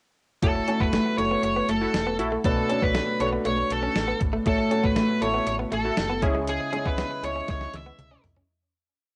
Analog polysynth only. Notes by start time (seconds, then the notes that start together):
1.81 E4 F#4 A4
2.19 E4 F#4 A4
5.85 E4 F#4 A4
6.22 C#4 E4 G#4